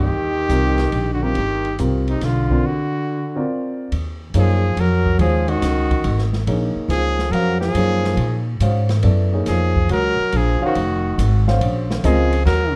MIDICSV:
0, 0, Header, 1, 7, 480
1, 0, Start_track
1, 0, Tempo, 427350
1, 86, Time_signature, 3, 2, 24, 8
1, 14329, End_track
2, 0, Start_track
2, 0, Title_t, "Trumpet"
2, 0, Program_c, 0, 56
2, 0, Note_on_c, 0, 67, 93
2, 1230, Note_off_c, 0, 67, 0
2, 1269, Note_on_c, 0, 66, 65
2, 1379, Note_on_c, 0, 67, 91
2, 1396, Note_off_c, 0, 66, 0
2, 2009, Note_off_c, 0, 67, 0
2, 2344, Note_on_c, 0, 63, 66
2, 2523, Note_on_c, 0, 65, 73
2, 2540, Note_off_c, 0, 63, 0
2, 2987, Note_on_c, 0, 66, 78
2, 3004, Note_off_c, 0, 65, 0
2, 3932, Note_off_c, 0, 66, 0
2, 4931, Note_on_c, 0, 68, 88
2, 5393, Note_on_c, 0, 70, 96
2, 5410, Note_off_c, 0, 68, 0
2, 5831, Note_off_c, 0, 70, 0
2, 5838, Note_on_c, 0, 68, 85
2, 6166, Note_on_c, 0, 66, 85
2, 6182, Note_off_c, 0, 68, 0
2, 7118, Note_off_c, 0, 66, 0
2, 7758, Note_on_c, 0, 68, 97
2, 8217, Note_on_c, 0, 70, 91
2, 8234, Note_off_c, 0, 68, 0
2, 8535, Note_off_c, 0, 70, 0
2, 8541, Note_on_c, 0, 68, 93
2, 9462, Note_off_c, 0, 68, 0
2, 10652, Note_on_c, 0, 68, 98
2, 11091, Note_off_c, 0, 68, 0
2, 11142, Note_on_c, 0, 70, 94
2, 11645, Note_on_c, 0, 68, 91
2, 11661, Note_off_c, 0, 70, 0
2, 11944, Note_off_c, 0, 68, 0
2, 11973, Note_on_c, 0, 66, 76
2, 12866, Note_off_c, 0, 66, 0
2, 13535, Note_on_c, 0, 68, 98
2, 13978, Note_off_c, 0, 68, 0
2, 13994, Note_on_c, 0, 70, 98
2, 14329, Note_off_c, 0, 70, 0
2, 14329, End_track
3, 0, Start_track
3, 0, Title_t, "Grand piano"
3, 0, Program_c, 1, 0
3, 565, Note_on_c, 1, 55, 52
3, 565, Note_on_c, 1, 60, 48
3, 570, Note_on_c, 1, 70, 53
3, 575, Note_on_c, 1, 65, 43
3, 856, Note_off_c, 1, 55, 0
3, 856, Note_off_c, 1, 60, 0
3, 858, Note_off_c, 1, 70, 0
3, 861, Note_off_c, 1, 65, 0
3, 1364, Note_on_c, 1, 55, 61
3, 1367, Note_on_c, 1, 60, 53
3, 1371, Note_on_c, 1, 65, 48
3, 1379, Note_on_c, 1, 70, 63
3, 1507, Note_off_c, 1, 55, 0
3, 1508, Note_off_c, 1, 60, 0
3, 1510, Note_off_c, 1, 65, 0
3, 1515, Note_off_c, 1, 70, 0
3, 2003, Note_on_c, 1, 55, 51
3, 2008, Note_on_c, 1, 60, 50
3, 2015, Note_on_c, 1, 65, 48
3, 2018, Note_on_c, 1, 70, 60
3, 2293, Note_off_c, 1, 55, 0
3, 2296, Note_off_c, 1, 60, 0
3, 2299, Note_off_c, 1, 65, 0
3, 2301, Note_off_c, 1, 70, 0
3, 2809, Note_on_c, 1, 60, 62
3, 2813, Note_on_c, 1, 65, 52
3, 2823, Note_on_c, 1, 70, 53
3, 2825, Note_on_c, 1, 74, 62
3, 2948, Note_off_c, 1, 60, 0
3, 2950, Note_off_c, 1, 65, 0
3, 2955, Note_off_c, 1, 70, 0
3, 2956, Note_off_c, 1, 74, 0
3, 3770, Note_on_c, 1, 60, 62
3, 3773, Note_on_c, 1, 65, 55
3, 3777, Note_on_c, 1, 70, 54
3, 3784, Note_on_c, 1, 74, 72
3, 4370, Note_off_c, 1, 60, 0
3, 4371, Note_off_c, 1, 65, 0
3, 4373, Note_off_c, 1, 70, 0
3, 4377, Note_off_c, 1, 74, 0
3, 4876, Note_on_c, 1, 58, 54
3, 4879, Note_on_c, 1, 63, 55
3, 4881, Note_on_c, 1, 68, 52
3, 4889, Note_on_c, 1, 73, 61
3, 5165, Note_off_c, 1, 58, 0
3, 5167, Note_off_c, 1, 63, 0
3, 5168, Note_off_c, 1, 68, 0
3, 5172, Note_off_c, 1, 73, 0
3, 5838, Note_on_c, 1, 61, 48
3, 5839, Note_on_c, 1, 56, 47
3, 5840, Note_on_c, 1, 66, 43
3, 5846, Note_on_c, 1, 72, 53
3, 6572, Note_off_c, 1, 56, 0
3, 6572, Note_off_c, 1, 61, 0
3, 6573, Note_off_c, 1, 66, 0
3, 6575, Note_off_c, 1, 72, 0
3, 7267, Note_on_c, 1, 58, 59
3, 7275, Note_on_c, 1, 63, 54
3, 7275, Note_on_c, 1, 68, 52
3, 7275, Note_on_c, 1, 73, 65
3, 8006, Note_off_c, 1, 58, 0
3, 8009, Note_off_c, 1, 63, 0
3, 8009, Note_off_c, 1, 68, 0
3, 8009, Note_off_c, 1, 73, 0
3, 8234, Note_on_c, 1, 61, 59
3, 8241, Note_on_c, 1, 66, 53
3, 8244, Note_on_c, 1, 72, 49
3, 8247, Note_on_c, 1, 77, 64
3, 8522, Note_off_c, 1, 61, 0
3, 8525, Note_off_c, 1, 66, 0
3, 8526, Note_off_c, 1, 72, 0
3, 8528, Note_off_c, 1, 77, 0
3, 8716, Note_on_c, 1, 68, 49
3, 8718, Note_on_c, 1, 58, 52
3, 8718, Note_on_c, 1, 63, 44
3, 8726, Note_on_c, 1, 73, 57
3, 9451, Note_off_c, 1, 68, 0
3, 9452, Note_off_c, 1, 58, 0
3, 9452, Note_off_c, 1, 63, 0
3, 9456, Note_off_c, 1, 73, 0
3, 9674, Note_on_c, 1, 66, 51
3, 9675, Note_on_c, 1, 61, 57
3, 9683, Note_on_c, 1, 72, 55
3, 9686, Note_on_c, 1, 77, 62
3, 9963, Note_off_c, 1, 61, 0
3, 9963, Note_off_c, 1, 66, 0
3, 9967, Note_off_c, 1, 72, 0
3, 9969, Note_off_c, 1, 77, 0
3, 10141, Note_on_c, 1, 59, 56
3, 10151, Note_on_c, 1, 64, 52
3, 10153, Note_on_c, 1, 74, 66
3, 10156, Note_on_c, 1, 69, 53
3, 10437, Note_off_c, 1, 59, 0
3, 10443, Note_off_c, 1, 64, 0
3, 10443, Note_off_c, 1, 74, 0
3, 10445, Note_off_c, 1, 69, 0
3, 10474, Note_on_c, 1, 58, 57
3, 10485, Note_on_c, 1, 63, 54
3, 10488, Note_on_c, 1, 73, 59
3, 10490, Note_on_c, 1, 68, 53
3, 10891, Note_off_c, 1, 58, 0
3, 10897, Note_off_c, 1, 63, 0
3, 10898, Note_off_c, 1, 73, 0
3, 10899, Note_off_c, 1, 68, 0
3, 11920, Note_on_c, 1, 61, 73
3, 11925, Note_on_c, 1, 66, 75
3, 11931, Note_on_c, 1, 72, 73
3, 11933, Note_on_c, 1, 77, 85
3, 12062, Note_off_c, 1, 61, 0
3, 12065, Note_off_c, 1, 66, 0
3, 12068, Note_off_c, 1, 72, 0
3, 12069, Note_off_c, 1, 77, 0
3, 12888, Note_on_c, 1, 61, 73
3, 12889, Note_on_c, 1, 66, 60
3, 12895, Note_on_c, 1, 72, 69
3, 12895, Note_on_c, 1, 77, 79
3, 13494, Note_off_c, 1, 61, 0
3, 13495, Note_off_c, 1, 66, 0
3, 13498, Note_off_c, 1, 72, 0
3, 13498, Note_off_c, 1, 77, 0
3, 13523, Note_on_c, 1, 65, 64
3, 13524, Note_on_c, 1, 60, 66
3, 13527, Note_on_c, 1, 70, 61
3, 13532, Note_on_c, 1, 75, 81
3, 13815, Note_off_c, 1, 65, 0
3, 13816, Note_off_c, 1, 60, 0
3, 13817, Note_off_c, 1, 70, 0
3, 13820, Note_off_c, 1, 75, 0
3, 14329, End_track
4, 0, Start_track
4, 0, Title_t, "Tenor saxophone"
4, 0, Program_c, 2, 66
4, 0, Note_on_c, 2, 51, 76
4, 1217, Note_off_c, 2, 51, 0
4, 1276, Note_on_c, 2, 50, 58
4, 1400, Note_on_c, 2, 51, 79
4, 1416, Note_off_c, 2, 50, 0
4, 2020, Note_off_c, 2, 51, 0
4, 2335, Note_on_c, 2, 48, 58
4, 2508, Note_on_c, 2, 50, 61
4, 2524, Note_off_c, 2, 48, 0
4, 2988, Note_off_c, 2, 50, 0
4, 2988, Note_on_c, 2, 50, 64
4, 3932, Note_off_c, 2, 50, 0
4, 4902, Note_on_c, 2, 53, 75
4, 5368, Note_on_c, 2, 54, 83
4, 5385, Note_off_c, 2, 53, 0
4, 5839, Note_off_c, 2, 54, 0
4, 5847, Note_on_c, 2, 53, 83
4, 6160, Note_on_c, 2, 51, 72
4, 6177, Note_off_c, 2, 53, 0
4, 7115, Note_off_c, 2, 51, 0
4, 7741, Note_on_c, 2, 53, 73
4, 8217, Note_on_c, 2, 54, 79
4, 8234, Note_off_c, 2, 53, 0
4, 8531, Note_off_c, 2, 54, 0
4, 8538, Note_on_c, 2, 53, 84
4, 9461, Note_off_c, 2, 53, 0
4, 10644, Note_on_c, 2, 53, 74
4, 11086, Note_off_c, 2, 53, 0
4, 11119, Note_on_c, 2, 54, 84
4, 11633, Note_on_c, 2, 53, 82
4, 11650, Note_off_c, 2, 54, 0
4, 11939, Note_off_c, 2, 53, 0
4, 11959, Note_on_c, 2, 51, 71
4, 12859, Note_off_c, 2, 51, 0
4, 13519, Note_on_c, 2, 53, 82
4, 13969, Note_off_c, 2, 53, 0
4, 13987, Note_on_c, 2, 54, 83
4, 14318, Note_off_c, 2, 54, 0
4, 14329, End_track
5, 0, Start_track
5, 0, Title_t, "Upright bass"
5, 0, Program_c, 3, 32
5, 77, Note_on_c, 3, 39, 61
5, 543, Note_off_c, 3, 39, 0
5, 549, Note_on_c, 3, 36, 80
5, 1022, Note_off_c, 3, 36, 0
5, 1039, Note_on_c, 3, 34, 70
5, 1507, Note_off_c, 3, 34, 0
5, 1532, Note_on_c, 3, 31, 68
5, 1993, Note_off_c, 3, 31, 0
5, 2019, Note_on_c, 3, 36, 74
5, 2476, Note_off_c, 3, 36, 0
5, 2486, Note_on_c, 3, 35, 74
5, 2949, Note_off_c, 3, 35, 0
5, 4398, Note_on_c, 3, 39, 69
5, 4862, Note_off_c, 3, 39, 0
5, 4875, Note_on_c, 3, 42, 82
5, 5339, Note_off_c, 3, 42, 0
5, 5351, Note_on_c, 3, 41, 76
5, 5816, Note_off_c, 3, 41, 0
5, 5828, Note_on_c, 3, 39, 74
5, 6294, Note_off_c, 3, 39, 0
5, 6314, Note_on_c, 3, 37, 82
5, 6777, Note_off_c, 3, 37, 0
5, 6788, Note_on_c, 3, 32, 78
5, 7254, Note_off_c, 3, 32, 0
5, 7261, Note_on_c, 3, 34, 75
5, 7565, Note_off_c, 3, 34, 0
5, 7732, Note_on_c, 3, 37, 83
5, 8200, Note_off_c, 3, 37, 0
5, 8207, Note_on_c, 3, 41, 76
5, 8683, Note_off_c, 3, 41, 0
5, 8697, Note_on_c, 3, 42, 77
5, 9164, Note_off_c, 3, 42, 0
5, 9171, Note_on_c, 3, 46, 82
5, 9646, Note_off_c, 3, 46, 0
5, 9661, Note_on_c, 3, 44, 81
5, 10132, Note_off_c, 3, 44, 0
5, 10151, Note_on_c, 3, 42, 73
5, 10618, Note_off_c, 3, 42, 0
5, 10643, Note_on_c, 3, 41, 82
5, 11105, Note_off_c, 3, 41, 0
5, 11120, Note_on_c, 3, 37, 81
5, 11419, Note_off_c, 3, 37, 0
5, 11602, Note_on_c, 3, 34, 79
5, 11901, Note_off_c, 3, 34, 0
5, 12081, Note_on_c, 3, 29, 83
5, 12547, Note_off_c, 3, 29, 0
5, 12558, Note_on_c, 3, 32, 82
5, 13026, Note_off_c, 3, 32, 0
5, 13038, Note_on_c, 3, 34, 79
5, 13508, Note_off_c, 3, 34, 0
5, 13519, Note_on_c, 3, 37, 90
5, 13980, Note_off_c, 3, 37, 0
5, 13987, Note_on_c, 3, 39, 81
5, 14329, Note_off_c, 3, 39, 0
5, 14329, End_track
6, 0, Start_track
6, 0, Title_t, "Muted upright bass strokes"
6, 7587, Note_on_c, 9, 29, 40
6, 7699, Note_off_c, 9, 29, 0
6, 11451, Note_on_c, 9, 29, 39
6, 11563, Note_off_c, 9, 29, 0
6, 11926, Note_on_c, 9, 29, 41
6, 12038, Note_off_c, 9, 29, 0
6, 14329, End_track
7, 0, Start_track
7, 0, Title_t, "Drums"
7, 556, Note_on_c, 9, 44, 49
7, 556, Note_on_c, 9, 51, 46
7, 668, Note_off_c, 9, 44, 0
7, 668, Note_off_c, 9, 51, 0
7, 874, Note_on_c, 9, 51, 37
7, 879, Note_on_c, 9, 38, 37
7, 987, Note_off_c, 9, 51, 0
7, 991, Note_off_c, 9, 38, 0
7, 1034, Note_on_c, 9, 51, 49
7, 1146, Note_off_c, 9, 51, 0
7, 1516, Note_on_c, 9, 51, 48
7, 1628, Note_off_c, 9, 51, 0
7, 1849, Note_on_c, 9, 51, 33
7, 1962, Note_off_c, 9, 51, 0
7, 2006, Note_on_c, 9, 44, 43
7, 2006, Note_on_c, 9, 51, 57
7, 2118, Note_off_c, 9, 44, 0
7, 2118, Note_off_c, 9, 51, 0
7, 2332, Note_on_c, 9, 51, 40
7, 2444, Note_off_c, 9, 51, 0
7, 2485, Note_on_c, 9, 51, 54
7, 2490, Note_on_c, 9, 38, 33
7, 2597, Note_off_c, 9, 51, 0
7, 2602, Note_off_c, 9, 38, 0
7, 2813, Note_on_c, 9, 36, 42
7, 2925, Note_off_c, 9, 36, 0
7, 4402, Note_on_c, 9, 51, 57
7, 4515, Note_off_c, 9, 51, 0
7, 4874, Note_on_c, 9, 44, 47
7, 4874, Note_on_c, 9, 51, 65
7, 4986, Note_off_c, 9, 44, 0
7, 4986, Note_off_c, 9, 51, 0
7, 5358, Note_on_c, 9, 51, 57
7, 5471, Note_off_c, 9, 51, 0
7, 5681, Note_on_c, 9, 36, 44
7, 5793, Note_off_c, 9, 36, 0
7, 5831, Note_on_c, 9, 51, 59
7, 5943, Note_off_c, 9, 51, 0
7, 6155, Note_on_c, 9, 51, 43
7, 6267, Note_off_c, 9, 51, 0
7, 6314, Note_on_c, 9, 44, 50
7, 6314, Note_on_c, 9, 51, 62
7, 6318, Note_on_c, 9, 38, 35
7, 6426, Note_off_c, 9, 44, 0
7, 6426, Note_off_c, 9, 51, 0
7, 6431, Note_off_c, 9, 38, 0
7, 6637, Note_on_c, 9, 36, 55
7, 6637, Note_on_c, 9, 51, 50
7, 6749, Note_off_c, 9, 51, 0
7, 6750, Note_off_c, 9, 36, 0
7, 6784, Note_on_c, 9, 51, 60
7, 6897, Note_off_c, 9, 51, 0
7, 6948, Note_on_c, 9, 38, 28
7, 7060, Note_off_c, 9, 38, 0
7, 7112, Note_on_c, 9, 38, 41
7, 7225, Note_off_c, 9, 38, 0
7, 7269, Note_on_c, 9, 51, 61
7, 7382, Note_off_c, 9, 51, 0
7, 7748, Note_on_c, 9, 44, 45
7, 7748, Note_on_c, 9, 51, 61
7, 7860, Note_off_c, 9, 44, 0
7, 7860, Note_off_c, 9, 51, 0
7, 8074, Note_on_c, 9, 38, 37
7, 8187, Note_off_c, 9, 38, 0
7, 8233, Note_on_c, 9, 51, 60
7, 8345, Note_off_c, 9, 51, 0
7, 8554, Note_on_c, 9, 38, 37
7, 8667, Note_off_c, 9, 38, 0
7, 8702, Note_on_c, 9, 51, 70
7, 8814, Note_off_c, 9, 51, 0
7, 9035, Note_on_c, 9, 38, 41
7, 9148, Note_off_c, 9, 38, 0
7, 9178, Note_on_c, 9, 51, 57
7, 9290, Note_off_c, 9, 51, 0
7, 9664, Note_on_c, 9, 44, 54
7, 9664, Note_on_c, 9, 51, 68
7, 9776, Note_off_c, 9, 44, 0
7, 9776, Note_off_c, 9, 51, 0
7, 9985, Note_on_c, 9, 51, 43
7, 9990, Note_on_c, 9, 38, 52
7, 10098, Note_off_c, 9, 51, 0
7, 10102, Note_off_c, 9, 38, 0
7, 10138, Note_on_c, 9, 51, 60
7, 10251, Note_off_c, 9, 51, 0
7, 10625, Note_on_c, 9, 44, 50
7, 10625, Note_on_c, 9, 51, 62
7, 10630, Note_on_c, 9, 38, 35
7, 10737, Note_off_c, 9, 44, 0
7, 10737, Note_off_c, 9, 51, 0
7, 10742, Note_off_c, 9, 38, 0
7, 10959, Note_on_c, 9, 36, 57
7, 11071, Note_off_c, 9, 36, 0
7, 11110, Note_on_c, 9, 51, 57
7, 11223, Note_off_c, 9, 51, 0
7, 11596, Note_on_c, 9, 51, 63
7, 11708, Note_off_c, 9, 51, 0
7, 12077, Note_on_c, 9, 51, 59
7, 12189, Note_off_c, 9, 51, 0
7, 12566, Note_on_c, 9, 44, 63
7, 12566, Note_on_c, 9, 51, 74
7, 12678, Note_off_c, 9, 44, 0
7, 12678, Note_off_c, 9, 51, 0
7, 12893, Note_on_c, 9, 38, 49
7, 13005, Note_off_c, 9, 38, 0
7, 13041, Note_on_c, 9, 51, 68
7, 13154, Note_off_c, 9, 51, 0
7, 13372, Note_on_c, 9, 38, 60
7, 13485, Note_off_c, 9, 38, 0
7, 13522, Note_on_c, 9, 44, 61
7, 13522, Note_on_c, 9, 51, 66
7, 13634, Note_off_c, 9, 44, 0
7, 13634, Note_off_c, 9, 51, 0
7, 13844, Note_on_c, 9, 51, 51
7, 13956, Note_off_c, 9, 51, 0
7, 14002, Note_on_c, 9, 51, 55
7, 14006, Note_on_c, 9, 38, 37
7, 14114, Note_off_c, 9, 51, 0
7, 14119, Note_off_c, 9, 38, 0
7, 14329, End_track
0, 0, End_of_file